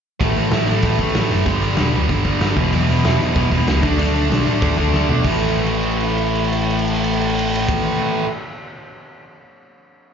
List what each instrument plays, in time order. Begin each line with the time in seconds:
0.21 picked electric bass A1, distorted electric guitar A2 E3 A3, kick, open hi-hat
0.36 picked electric bass A1, distorted electric guitar A2 E3 A3, open hi-hat
0.51 picked electric bass A1, distorted electric guitar A2 E3 A3, snare, open hi-hat
0.68 picked electric bass A1, distorted electric guitar A2 E3 A3, open hi-hat
0.83 picked electric bass A1, distorted electric guitar A2 E3 A3, kick, open hi-hat
0.99 picked electric bass A1, distorted electric guitar A2 E3 A3, kick, open hi-hat
1.14 picked electric bass A1, distorted electric guitar A2 E3 A3, snare, open hi-hat
1.31 picked electric bass F#1, distorted electric guitar A2 E3 A3, open hi-hat
1.45 picked electric bass G1, distorted electric guitar G2 D3 G3, kick, open hi-hat
1.61 distorted electric guitar G2 D3 G3, open hi-hat
1.77 picked electric bass E1, distorted electric guitar G2 D3 G3, snare, open hi-hat
1.93 picked electric bass D2, distorted electric guitar G2 D3 G3, open hi-hat
2.09 picked electric bass G1, distorted electric guitar G2 D3 G3, kick, open hi-hat
2.25 distorted electric guitar G2 D3 G3, kick, open hi-hat
2.41 picked electric bass G1, distorted electric guitar G2 D3 G3, snare, open hi-hat
2.57 picked electric bass E1, distorted electric guitar E2 B2 E3, kick, open hi-hat
2.73 picked electric bass E1, distorted electric guitar E2 B2 E3, open hi-hat
2.88 picked electric bass E1, distorted electric guitar E2 B2 E3, open hi-hat
3.05 picked electric bass E1, distorted electric guitar E2 B2 E3, snare, open hi-hat
3.20 picked electric bass E1, distorted electric guitar E2 B2 E3, open hi-hat
3.36 picked electric bass E1, distorted electric guitar E2 B2 E3, kick, open hi-hat
3.51 picked electric bass E1, distorted electric guitar E2 B2 E3, kick, open hi-hat
3.68 picked electric bass C#2, distorted electric guitar E2 B2 E3, snare, open hi-hat
3.83 picked electric bass D2, distorted electric guitar D3 A3 D4, kick, open hi-hat
3.99 picked electric bass D2, distorted electric guitar D3 A3 D4, open hi-hat
4.15 distorted electric guitar D3 A3 D4, open hi-hat
4.29 picked electric bass B1, distorted electric guitar D3 A3 D4, snare, open hi-hat
4.47 picked electric bass A2, distorted electric guitar D3 A3 D4, open hi-hat
4.62 picked electric bass D2, distorted electric guitar D3 A3 D4, kick, open hi-hat
4.78 distorted electric guitar D3 A3 D4, kick, open hi-hat
4.94 picked electric bass D2, distorted electric guitar D3 A3 D4, snare
5.09 picked electric bass B2, distorted electric guitar D3 A3 D4, floor tom
5.24 picked electric bass A1, distorted electric guitar A2 E3 A3, kick, crash
5.40 crash
5.49 ride
5.58 crash
5.66 ride
5.75 crash
5.83 ride
5.91 crash
6.00 ride
6.09 crash
6.18 ride
6.26 crash
6.35 ride
6.44 crash
6.53 ride
6.62 crash
6.70 ride
6.79 crash
6.88 ride
6.96 crash
7.04 ride
7.13 crash
7.21 ride
7.30 crash
7.39 ride
7.47 crash
7.55 ride
7.68 kick, crash